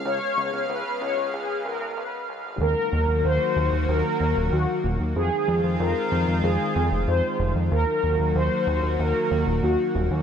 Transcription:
<<
  \new Staff \with { instrumentName = "Analog polysynth" } { \time 4/4 \key ees \dorian \tempo 4 = 94 des''4 ces''8 des''8 aes'8 bes'8 ces''8. r16 | bes'4 c''4 bes'4 ges'8. r16 | aes'4 bes'4 aes'4 c''8. r16 | bes'4 c''4 bes'4 ges'8. r16 | }
  \new Staff \with { instrumentName = "Analog synth pad" } { \time 4/4 \key ees \dorian << { <aes ces' f''>1 | <ges bes ges'>1 | <aes c' f'>1 | <ges bes ges'>1 | } \\ { des1 | ees1 | ees1~ | ees1 | } >> }
  \new Staff \with { instrumentName = "Analog synth bass" } { \clef bass \time 4/4 \key ees \dorian des,16 r16 des,16 des,16 des,16 r16 des,16 des,16 des,16 r16 des,16 des,16 des,16 r16 des,16 aes,,16 | ees,16 r16 ees,16 ees,16 ees,16 r16 ees,16 ees,16 ees,16 r16 ees,16 ees,,16 ees,16 r16 ees,,16 ees,16 | f,16 r16 f,16 f,16 f,16 r16 f,16 f,16 f,16 r16 f,16 f,,16 f,16 r16 f,,16 f,16 | ees,16 r16 ees,16 ees,16 ees,16 r16 ees,16 ees,16 ees,16 r16 ees,16 ees,,16 ees,16 r16 ees,,16 ees,16 | }
>>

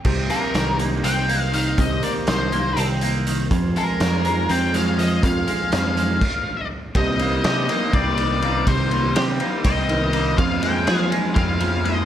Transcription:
<<
  \new Staff \with { instrumentName = "Lead electric guitar" } { \time 7/8 \key c \phrygian \tempo 4 = 122 r8 bes'4 r8 g''4 f''8 | ees''8 d''8 c''4 r4. | r8 bes'4. g''8 f''8 ees''8 | f''2. r8 |
ees''4 ees''4 d''4. | c''4 r4 ees''4. | f''8 g''4 r8 f''4 ees''8 | }
  \new Staff \with { instrumentName = "Transistor combo organ" } { \time 7/8 \key c \phrygian << { <ees' g' bes'>2.~ <ees' g' bes'>8~ | <ees' g' bes'>2.~ <ees' g' bes'>8 | <f' aes' c''>2.~ <f' aes' c''>8~ | <f' aes' c''>2 r4. |
<ees' g' bes'>2.~ <ees' g' bes'>8~ | <ees' g' bes'>2.~ <ees' g' bes'>8 | <f' aes' c''>2.~ <f' aes' c''>8 | } \\ { c'2.~ c'8~ | c'2.~ c'8~ | c'2.~ c'8~ | c'2 r4. |
c'2.~ c'8~ | c'2.~ c'8~ | c'2.~ c'8 | } >> }
  \new Staff \with { instrumentName = "Clean electric guitar" } { \clef bass \time 7/8 \key c \phrygian c8 bes8 ees8 bes8 c'8 bes8 ees8 | c8 bes8 ees8 bes8 c'8 bes8 ees8 | f,8 aes8 f8 aes8 c'8 aes8 f8 | f,8 aes8 f8 aes8 r4. |
c8 bes8 g'8 bes8 c'8 ees8 bes8 | c8 bes8 g'8 bes8 c'8 ees8 bes8 | f,8 aes8 aes'8 aes8 c'8 f8 aes8 | }
  \new Staff \with { instrumentName = "Picked electric bass" } { \clef bass \time 7/8 \key c \phrygian c,8 r8 c,4 c,4. | c,8 r8 c,4 c,4. | f,8 r8 f,4 f,4. | f,8 r8 f,4 r4. |
c,4 c8 r8 c,4. | c,4 c8 r8 c,4. | f,4 f8 r8 f,4. | }
  \new DrumStaff \with { instrumentName = "Drums" } \drummode { \time 7/8 <cymc bd>8 <hh sn>8 <hh sn>8 hh8 <hh sn>8 hh8 hh8 | <hh bd>8 hh8 <hh sn>8 hh8 hh8 hh8 hh8 | <hh bd>8 hh8 <hh sn>8 hh8 hh8 <hh sn>8 hh8 | <hh bd>8 hh8 <hh sn>8 hh8 <cymc bd>4. |
<bd cymr>8 cymr8 <cymr sn>8 cymr8 <bd cymr>8 cymr8 cymr8 | <bd cymr>8 cymr8 <cymr sn>8 cymr8 <bd cymr>8 cymr8 cymr8 | <bd cymr>8 <cymr sn>8 <cymr sn>8 cymr8 <bd cymr sn>8 cymr8 cymr8 | }
>>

